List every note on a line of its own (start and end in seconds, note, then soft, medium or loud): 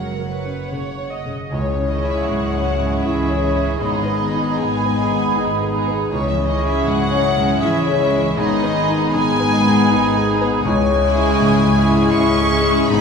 0.00 1.27 F#1 medium
0.00 0.59 F#2 soft
0.00 1.48 F#2 soft
0.00 0.72 C#3 soft
0.00 0.73 F#3 soft
0.00 0.45 C#4 soft
0.00 0.36 F#4 soft
0.00 0.30 A#4 soft
0.00 1.27 C#5 soft
0.00 1.27 F#5 soft
0.19 0.62 A#4 soft
0.33 0.72 B4 soft
0.45 0.88 C#4 soft
0.72 1.15 C#3 soft
0.72 1.13 C#5 soft
0.98 1.41 C#4 soft
1.12 1.51 D#5 soft
1.26 1.52 C#3 soft
1.50 2.19 C#2 medium
1.50 3.77 C#2 soft
1.50 1.87 C#3 soft
1.50 3.84 C#3 soft
1.50 6.06 G#3 medium
1.50 3.76 C#4 medium
1.50 3.01 E4 soft
1.50 3.01 G#4 medium
1.50 1.87 C#5 medium
1.50 3.01 C#6 medium
1.72 5.62 G#3 soft
1.78 2.18 C#4 soft
1.89 2.09 D#3 soft
1.89 2.64 G#3 soft
1.89 2.64 C#4 soft
1.89 3.60 C#4 soft
1.89 2.64 E4 soft
1.89 2.64 G#4 soft
1.89 2.09 D#5 medium
2.04 2.44 E4 soft
2.04 2.28 E5 medium
2.09 2.28 E3 soft
2.09 3.84 E4 soft
2.25 2.96 C#2 medium
2.25 2.70 G#2 soft
2.25 3.03 F#3 medium
2.25 3.03 F#5 medium
2.48 3.24 C#5 soft
2.54 2.95 C#4 soft
2.65 3.40 G#3 soft
2.65 3.40 C#4 soft
2.65 3.41 E4 soft
2.65 3.41 G#4 soft
2.65 3.05 E5 soft
2.80 3.20 G#2 soft
2.86 5.15 G#5 soft
3.02 3.72 C#2 medium
3.02 3.81 E3 medium
3.02 3.79 E4 medium
3.02 3.46 E4 soft
3.02 3.79 G#4 medium
3.02 3.80 E5 medium
3.02 3.85 E5 soft
3.02 3.80 C#6 medium
3.25 3.84 C#5 soft
3.30 3.71 G#4 soft
3.41 3.79 G#3 soft
3.41 3.79 C#4 soft
3.41 3.80 E4 soft
3.41 4.58 G#4 soft
3.41 3.80 G#4 soft
3.56 3.81 C#4 soft
3.62 3.84 C#4 soft
3.78 4.50 G#1 medium
3.78 6.13 G#2 medium
3.78 6.07 G#2 soft
3.78 4.57 D#3 medium
3.78 4.19 G#3 soft
3.78 4.19 B3 soft
3.78 6.06 B3 medium
3.78 4.57 D#4 medium
3.78 4.19 D#4 soft
3.78 4.57 G#4 medium
3.78 4.19 G#4 soft
3.78 4.56 D#5 medium
3.78 4.57 B5 medium
4.00 6.13 D#3 soft
4.06 4.48 B3 soft
4.20 4.96 G#3 soft
4.20 4.96 B3 soft
4.20 5.92 B3 soft
4.20 4.95 D#4 soft
4.20 4.95 G#4 soft
4.33 4.75 D#4 soft
4.40 6.13 D#4 soft
4.57 5.26 G#1 medium
4.57 5.00 D#3 soft
4.57 5.73 G#3 medium
4.57 6.07 D#4 soft
4.57 6.07 G#4 medium
4.57 5.72 G#4 soft
4.57 5.72 G#5 medium
4.57 6.07 B5 medium
4.79 5.53 B4 soft
4.86 5.26 B3 soft
4.96 5.70 G#3 soft
4.96 5.71 B3 soft
4.96 5.71 D#4 soft
4.96 5.71 G#4 soft
4.96 5.34 D#5 soft
5.11 5.51 D#3 soft
5.16 7.41 G#5 soft
5.35 6.02 G#1 medium
5.35 5.76 D#4 soft
5.35 6.14 D#5 soft
5.54 6.13 B4 soft
5.62 6.01 G#4 soft
5.71 6.09 G#3 soft
5.71 6.09 B3 soft
5.71 6.09 D#4 soft
5.71 6.10 G#4 soft
5.71 6.85 G#4 soft
5.88 6.12 B3 soft
5.93 6.14 B3 soft
6.10 6.76 C#2 medium
6.10 8.34 C#2 medium
6.10 6.28 C#3 medium
6.10 8.40 C#3 medium
6.10 10.48 G#3 medium
6.10 8.33 C#4 medium
6.10 7.58 E4 medium
6.10 7.58 G#4 medium
6.10 6.28 C#5 medium
6.10 7.30 C#6 medium
6.29 6.48 E3 medium
6.29 10.20 G#3 soft
6.29 6.48 E5 medium
6.37 6.76 C#4 soft
6.47 6.67 D#3 medium
6.47 7.21 G#3 medium
6.47 7.21 C#4 medium
6.47 8.17 C#4 soft
6.47 7.22 E4 medium
6.47 7.22 G#4 medium
6.47 6.66 D#5 medium
6.62 7.01 E4 soft
6.67 6.86 E3 medium
6.67 8.41 E4 soft
6.67 6.85 E5 medium
6.84 7.52 C#2 medium
6.84 7.26 G#2 soft
6.84 7.61 F#3 medium
6.84 7.97 G#4 medium
6.84 7.60 F#5 loud
7.05 7.79 C#5 soft
7.12 7.52 C#4 soft
7.23 7.97 G#3 medium
7.23 7.97 C#4 medium
7.23 7.98 E4 soft
7.23 7.98 G#4 soft
7.23 7.60 E5 medium
7.37 7.77 G#2 soft
7.43 9.71 G#5 medium
7.60 8.28 C#2 medium
7.60 8.37 E3 medium
7.60 8.09 E4 medium
7.60 8.02 E4 medium
7.60 8.09 G#4 medium
7.60 8.37 E5 medium
7.60 8.40 E5 medium
7.60 8.35 C#6 medium
7.80 8.40 C#5 medium
7.88 8.27 G#4 soft
7.98 8.36 G#3 medium
7.98 8.36 C#4 medium
7.98 8.37 E4 medium
7.98 9.14 G#4 medium
7.98 8.36 G#4 soft
8.13 8.37 C#4 soft
8.18 8.40 C#4 soft
8.36 9.05 G#1 medium
8.36 10.60 G#2 medium
8.36 10.67 G#2 medium
8.36 9.14 D#3 medium
8.36 8.74 G#3 soft
8.36 8.74 B3 medium
8.36 10.48 B3 medium
8.36 9.10 D#4 medium
8.36 8.75 D#4 medium
8.36 9.10 G#4 medium
8.36 8.75 G#4 medium
8.36 9.12 D#5 medium
8.36 9.14 B5 medium
8.57 10.67 D#3 soft
8.63 9.04 B3 soft
8.75 9.50 G#3 medium
8.75 9.51 B3 medium
8.75 10.45 B3 medium
8.75 9.51 D#4 medium
8.75 9.51 G#4 medium
8.88 9.30 D#4 soft
8.96 10.67 D#4 medium
9.13 9.81 G#1 medium
9.13 9.55 D#3 medium
9.13 10.27 G#3 medium
9.13 10.61 D#4 medium
9.13 10.60 G#4 medium
9.13 10.26 G#4 medium
9.13 10.24 G#5 loud
9.13 10.62 B5 medium
9.34 10.08 B4 medium
9.40 9.80 B3 soft
9.52 10.25 G#3 medium
9.52 10.25 B3 medium
9.52 10.25 D#4 medium
9.52 10.26 G#4 medium
9.52 9.89 D#5 medium
9.67 10.06 D#3 soft
9.73 11.95 G#5 medium
9.89 10.55 G#1 medium
9.89 10.30 D#4 medium
9.89 10.67 D#5 medium
10.09 10.67 B4 medium
10.15 10.54 G#4 soft
10.27 10.63 G#3 medium
10.27 10.63 B3 medium
10.27 10.64 D#4 medium
10.27 11.38 G#4 medium
10.27 10.64 G#4 medium
10.41 10.65 B3 medium
10.46 10.67 B3 soft
10.63 11.30 C#2 medium
10.63 12.86 C#2 medium
10.63 12.92 C#3 medium
10.63 12.11 G#3 medium
10.63 13.01 G#3 medium
10.63 12.90 E4 medium
10.63 12.86 E4 medium
10.63 13.01 G#4 medium
10.63 12.11 G#5 loud
10.63 12.86 C#6 medium
10.83 12.92 C#4 medium
10.91 11.29 G#3 soft
11.01 11.75 G#3 medium
11.01 12.70 G#3 medium
11.01 11.75 C#4 medium
11.01 11.75 E4 medium
11.01 11.75 G#4 medium
11.15 11.54 E4 medium
11.21 11.56 E4 medium
11.38 12.06 C#2 medium
11.38 11.80 G#2 medium
11.38 12.33 G#4 medium
11.57 12.52 E4 medium
11.66 12.06 G#3 medium
11.76 12.51 G#3 medium
11.76 12.51 C#4 medium
11.76 12.50 E4 medium
11.76 12.50 G#4 medium
11.76 12.15 E5 medium
11.91 12.31 G#2 medium
11.97 13.01 G#5 medium
12.14 12.80 C#2 medium
12.14 12.88 C#4 medium
12.14 12.56 E4 medium
12.14 12.92 E5 medium
12.14 12.89 C#6 loud
12.34 13.01 G#4 medium
12.41 12.80 G#4 medium
12.52 12.88 G#3 medium
12.52 12.88 C#4 medium
12.52 12.88 E4 medium
12.52 12.92 E4 medium
12.52 12.88 G#4 medium
12.66 12.90 G#3 medium
12.71 13.01 G#3 soft
12.88 13.01 G#1 medium
12.88 13.01 G#2 medium
12.88 13.01 G#3 medium
12.88 13.01 B3 medium
12.88 13.01 D#4 medium
12.88 13.01 G#4 medium
12.88 13.01 B5 loud
12.88 13.01 D#6 medium